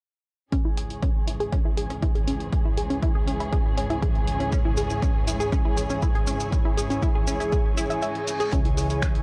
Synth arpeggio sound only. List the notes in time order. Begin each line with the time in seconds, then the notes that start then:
0.52 C#4
0.65 E4
0.77 G#4
1.02 C#4
1.27 E4
1.40 G#4
1.52 C#4
1.65 E4
1.77 G#4
1.90 C#4
2.02 E4
2.15 G#4
2.27 C#4
2.65 E4
2.77 G#4
2.90 C#4
3.02 E4
3.15 G#4
3.27 C#4
3.40 E4
3.52 G#4
3.77 C#4
3.90 E4
4.02 G#4
4.40 C#4
4.52 C#4
4.65 E4
4.77 G#4
5.02 C#4
5.27 E4
5.40 G#4
5.52 C#4
5.65 E4
5.77 G#4
5.90 C#4
6.02 E4
6.15 G#4
6.27 C#4
6.65 E4
6.77 G#4
6.90 C#4
7.02 E4
7.15 G#4
7.27 C#4
7.40 E4
7.52 G#4
7.77 E4
7.90 E5
8.02 E5
8.40 G#4
8.52 C#4
8.65 E4
8.77 G#4
9.02 C#4